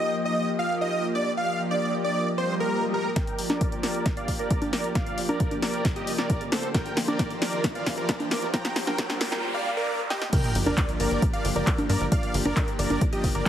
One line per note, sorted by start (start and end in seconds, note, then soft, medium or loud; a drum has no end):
0.00 0.19 F3 medium
0.00 0.19 A#3 medium
0.00 0.19 G4 medium
0.00 0.16 D#5 medium
0.00 0.19 D#5 medium
0.25 0.41 F3 medium
0.25 0.41 A#3 medium
0.25 0.41 G4 medium
0.25 0.49 D#5 medium
0.25 0.41 D#5 medium
0.59 0.67 F3 medium
0.59 0.67 A#3 medium
0.59 0.67 G4 medium
0.59 0.67 D#5 medium
0.59 0.75 F5 medium
0.70 0.86 F3 medium
0.70 0.86 A#3 medium
0.70 0.86 G4 medium
0.70 0.86 D#5 medium
0.81 1.05 D#5 loud
0.92 1.08 F3 medium
0.92 1.08 A#3 medium
0.92 1.08 G4 medium
0.92 1.08 D#5 medium
1.15 1.31 D5 medium
1.37 1.53 F3 medium
1.37 1.53 A#3 medium
1.37 1.53 G4 medium
1.37 1.53 D#5 medium
1.37 1.61 F5 loud
1.59 1.75 F3 medium
1.59 1.75 A#3 medium
1.59 1.75 G4 medium
1.59 1.75 D#5 medium
1.71 1.95 D5 loud
1.82 1.98 F3 medium
1.82 1.98 A#3 medium
1.82 1.97 G4 medium
1.82 1.98 D#5 medium
2.04 2.20 F3 medium
2.04 2.20 A#3 medium
2.04 2.20 G4 medium
2.04 2.28 D5 medium
2.04 2.20 D#5 medium
2.27 swell medium
2.38 2.46 F3 medium
2.38 2.46 A#3 medium
2.38 2.46 G4 medium
2.38 2.54 C5 medium
2.38 2.46 D#5 medium
2.49 2.65 F3 medium
2.49 2.65 A#3 medium
2.49 2.65 G4 medium
2.49 2.65 D#5 medium
2.60 2.84 A#4 medium
2.72 2.87 F3 medium
2.72 2.87 A#3 medium
2.72 2.87 G4 medium
2.72 2.87 D#5 medium
2.94 3.10 A#4 medium
3.16 3.32 F3 medium
3.16 3.32 A#3 medium
3.16 3.32 G4 medium
3.16 3.40 A#4 medium
3.16 3.32 D5 medium
3.16 3.40 G5 loud
3.16 kick loud
3.16 snare soft
3.16 closed hi-hat medium
3.16 riser medium
3.27 closed hi-hat soft
3.39 3.54 F3 medium
3.39 3.54 A#3 medium
3.39 3.54 G4 medium
3.39 3.54 D5 medium
3.39 open hi-hat loud
3.50 3.74 A#4 medium
3.50 3.74 D5 medium
3.50 snare soft
3.50 closed hi-hat soft
3.50 high conga medium
3.61 3.77 F3 medium
3.61 3.77 A#3 medium
3.61 3.77 G4 medium
3.61 3.77 D5 medium
3.61 kick loud
3.61 closed hi-hat medium
3.72 closed hi-hat soft
3.83 3.99 F3 medium
3.83 3.99 A#3 medium
3.83 3.99 G4 medium
3.83 4.07 A#4 medium
3.83 4.07 D5 medium
3.83 3.99 D5 medium
3.83 snare soft
3.83 open hi-hat medium
3.95 closed hi-hat soft
4.06 kick loud
4.06 snare medium
4.06 closed hi-hat medium
4.17 4.25 F3 medium
4.17 4.25 A#3 medium
4.17 4.25 G4 medium
4.17 4.33 D5 medium
4.17 4.25 D5 medium
4.17 4.33 F5 medium
4.17 closed hi-hat soft
4.28 4.44 F3 medium
4.28 4.44 A#3 medium
4.28 4.44 G4 medium
4.28 4.44 D5 medium
4.28 kick medium
4.28 open hi-hat loud
4.39 4.63 A#4 medium
4.39 4.63 D5 loud
4.50 4.66 F3 medium
4.50 4.66 A#3 medium
4.50 4.66 G4 medium
4.50 4.66 D5 medium
4.50 kick loud
4.50 closed hi-hat medium
4.62 closed hi-hat soft
4.62 high conga medium
4.73 4.89 A#4 medium
4.73 4.89 D5 medium
4.73 snare medium
4.73 open hi-hat medium
4.84 closed hi-hat soft
4.95 5.11 F3 medium
4.95 5.11 A#3 medium
4.95 5.11 G4 medium
4.95 5.19 D5 medium
4.95 5.11 D5 medium
4.95 5.19 F5 loud
4.95 kick loud
4.95 snare medium
4.95 closed hi-hat medium
5.07 closed hi-hat soft
5.18 5.33 F3 medium
5.18 5.33 A#3 medium
5.18 5.33 G4 medium
5.18 5.33 D5 medium
5.18 open hi-hat loud
5.29 5.53 A#4 medium
5.29 5.53 D5 medium
5.29 closed hi-hat soft
5.29 high conga medium
5.40 5.56 F3 medium
5.40 5.56 A#3 medium
5.40 5.56 G4 medium
5.40 5.56 D5 medium
5.40 kick loud
5.40 closed hi-hat medium
5.51 closed hi-hat soft
5.51 high conga medium
5.62 5.78 F3 medium
5.62 5.78 A#3 medium
5.62 5.78 G4 medium
5.62 5.87 A#4 medium
5.62 5.78 D5 medium
5.62 5.87 D5 medium
5.62 snare medium
5.62 open hi-hat medium
5.74 closed hi-hat soft
5.85 kick loud
5.85 snare medium
5.85 closed hi-hat medium
5.96 6.04 F3 medium
5.96 6.04 A#3 medium
5.96 6.04 G4 medium
5.96 6.12 G4 medium
5.96 6.04 D5 medium
5.96 6.12 D#5 medium
5.96 closed hi-hat soft
6.07 6.23 F3 medium
6.07 6.23 A#3 medium
6.07 6.23 G4 medium
6.07 6.23 D5 medium
6.07 open hi-hat loud
6.18 6.43 A#4 medium
6.18 6.43 D5 loud
6.18 snare medium
6.18 closed hi-hat soft
6.29 6.45 F3 medium
6.29 6.45 A#3 medium
6.29 6.45 G4 medium
6.29 6.45 D5 medium
6.29 kick loud
6.29 closed hi-hat loud
6.41 closed hi-hat soft
6.52 6.68 A4 medium
6.52 6.68 C5 medium
6.52 snare medium
6.52 open hi-hat medium
6.63 closed hi-hat soft
6.74 6.90 F3 medium
6.74 6.90 A#3 medium
6.74 6.90 G4 medium
6.74 6.99 A#4 medium
6.74 6.90 C5 medium
6.74 6.99 G5 loud
6.74 kick loud
6.74 snare medium
6.74 closed hi-hat medium
6.86 closed hi-hat soft
6.97 7.13 F3 medium
6.97 7.13 A#3 medium
6.97 7.13 G4 medium
6.97 7.13 C5 medium
6.97 snare medium
6.97 open hi-hat loud
7.08 7.32 A#4 medium
7.08 7.32 D5 medium
7.08 closed hi-hat soft
7.08 high conga medium
7.19 7.35 F3 medium
7.19 7.35 A#3 medium
7.19 7.35 G4 medium
7.19 7.35 C5 medium
7.19 kick loud
7.19 snare medium
7.19 closed hi-hat medium
7.31 closed hi-hat soft
7.42 7.57 F3 medium
7.42 7.57 A#3 medium
7.42 7.57 G4 medium
7.42 7.66 A#4 medium
7.42 7.57 C5 medium
7.42 7.66 D5 medium
7.42 snare medium
7.42 open hi-hat loud
7.53 closed hi-hat soft
7.64 kick loud
7.64 snare medium
7.64 closed hi-hat medium
7.75 7.83 F3 medium
7.75 7.83 A#3 medium
7.75 7.83 G4 medium
7.75 7.83 C5 medium
7.75 7.91 D5 medium
7.75 7.91 F5 medium
7.75 closed hi-hat soft
7.86 8.02 F3 loud
7.86 8.02 A#3 medium
7.86 8.02 G4 loud
7.86 8.02 C5 loud
7.86 kick medium
7.86 snare medium
7.86 open hi-hat loud
7.98 8.22 A#4 medium
7.98 8.22 D5 medium
7.98 closed hi-hat soft
8.09 8.25 F3 medium
8.09 8.25 A#3 medium
8.09 8.25 G4 medium
8.09 8.25 C5 medium
8.09 kick loud
8.09 snare medium
8.09 closed hi-hat medium
8.20 closed hi-hat soft
8.20 high conga medium
8.31 8.47 A#4 medium
8.31 8.47 D5 medium
8.31 snare medium
8.31 open hi-hat medium
8.42 closed hi-hat soft
8.54 8.69 F3 medium
8.54 8.69 A#3 medium
8.54 8.69 G4 medium
8.54 8.69 C5 medium
8.54 8.78 G5 medium
8.54 8.78 A#5 loud
8.54 kick loud
8.54 snare medium
8.54 closed hi-hat medium
8.54 noise sweep medium
8.65 snare medium
8.65 closed hi-hat soft
8.76 8.92 F3 medium
8.76 8.92 A#3 medium
8.76 8.92 G4 medium
8.76 8.92 C5 medium
8.76 snare medium
8.76 open hi-hat loud
8.87 9.11 A#4 medium
8.87 9.11 G5 medium
8.87 snare medium
8.87 high conga medium
8.98 9.14 F3 medium
8.98 9.14 A#3 medium
8.98 9.14 G4 medium
8.98 9.14 C5 medium
8.98 kick loud
8.98 snare loud
8.98 closed hi-hat medium
9.10 snare medium
9.10 closed hi-hat soft
9.10 high conga medium
9.21 9.37 F3 loud
9.21 9.37 A#3 medium
9.21 9.37 G4 medium
9.21 9.45 A#4 medium
9.21 9.36 C5 loud
9.21 9.45 G5 loud
9.21 snare loud
9.21 open hi-hat loud
9.32 snare medium
9.32 closed hi-hat soft
9.54 9.70 D5 medium
9.54 9.70 F5 medium
9.77 10.01 A#4 medium
9.77 10.01 D5 medium
10.10 10.26 G4 medium
10.10 10.26 D#5 medium
10.10 snare medium
10.22 snare medium
10.33 10.48 F3 medium
10.33 10.48 A#3 medium
10.33 10.48 D4 medium
10.33 10.48 G4 medium
10.33 10.57 A#4 medium
10.33 10.57 G5 loud
10.33 kick loud
10.33 closed hi-hat loud
10.33 crash loud
10.33 sub drop medium
10.44 closed hi-hat soft
10.55 10.62 G1 medium
10.55 10.71 F3 medium
10.55 10.71 A#3 medium
10.55 10.71 D4 medium
10.55 10.71 G4 medium
10.55 open hi-hat loud
10.66 10.74 G1 medium
10.66 10.90 A#4 medium
10.66 10.90 D5 loud
10.66 high conga medium
10.78 10.93 F3 medium
10.78 10.93 A#3 medium
10.78 10.93 D4 medium
10.78 10.93 G4 medium
10.78 kick loud
10.78 clap loud
10.78 closed hi-hat medium
10.89 closed hi-hat soft
11.00 11.07 G1 loud
11.00 11.16 F3 medium
11.00 11.16 A#3 medium
11.00 11.16 D4 medium
11.00 11.16 G4 loud
11.00 11.24 A#4 medium
11.00 11.24 D5 medium
11.00 open hi-hat medium
11.11 11.18 G1 medium
11.11 closed hi-hat soft
11.22 kick loud
11.22 closed hi-hat loud
11.33 11.41 F3 medium
11.33 11.41 A#3 medium
11.33 11.41 D4 medium
11.33 11.41 G4 medium
11.33 11.49 D5 medium
11.33 11.49 F5 medium
11.33 closed hi-hat soft
11.45 11.52 G1 loud
11.45 11.60 F3 loud
11.45 11.60 A#3 loud
11.45 11.60 D4 medium
11.45 11.60 G4 loud
11.45 open hi-hat loud
11.56 11.63 G1 medium
11.56 11.80 A#4 medium
11.56 11.80 D5 loud
11.56 closed hi-hat soft
11.67 11.83 F3 loud
11.67 11.83 A#3 medium
11.67 11.83 D4 medium
11.67 11.83 G4 medium
11.67 kick loud
11.67 clap loud
11.67 closed hi-hat loud
11.78 closed hi-hat soft
11.78 high conga medium
11.89 11.97 G2 medium
11.89 12.05 A#4 medium
11.89 12.05 D5 medium
11.89 open hi-hat medium
12.01 12.08 G1 medium
12.12 12.27 F3 medium
12.12 12.27 A#3 medium
12.12 12.27 D4 medium
12.12 12.27 G4 medium
12.12 12.36 D5 medium
12.12 12.36 F5 loud
12.12 kick loud
12.12 closed hi-hat loud
12.23 closed hi-hat soft
12.34 12.42 G1 loud
12.34 12.50 F3 medium
12.34 12.50 A#3 medium
12.34 12.50 D4 medium
12.34 12.50 G4 medium
12.34 open hi-hat loud
12.45 12.53 G1 medium
12.45 12.69 A#4 medium
12.45 12.69 D5 medium
12.45 high conga medium
12.57 12.72 F3 medium
12.57 12.72 A#3 medium
12.57 12.72 D4 medium
12.57 12.72 G4 medium
12.57 kick loud
12.57 clap loud
12.57 closed hi-hat medium
12.68 closed hi-hat soft
12.79 12.86 G1 loud
12.79 12.95 F3 medium
12.79 12.95 A#3 medium
12.79 12.95 D4 loud
12.79 12.95 G4 medium
12.79 13.03 A#4 medium
12.79 13.03 D5 loud
12.79 open hi-hat loud
12.90 12.98 G1 medium
12.90 closed hi-hat soft
12.90 high conga medium
13.01 kick loud
13.01 closed hi-hat loud
13.12 13.20 F3 loud
13.12 13.20 A#3 medium
13.12 13.20 D4 medium
13.12 13.29 G4 medium
13.12 13.20 G4 medium
13.12 13.29 D#5 medium
13.12 closed hi-hat soft
13.24 13.31 G1 medium
13.24 13.39 F3 medium
13.24 13.39 A#3 medium
13.24 13.39 D4 medium
13.24 13.39 G4 medium
13.24 kick medium
13.24 open hi-hat loud
13.35 13.42 G1 medium
13.35 13.49 A#4 medium
13.35 13.49 D5 loud
13.35 closed hi-hat soft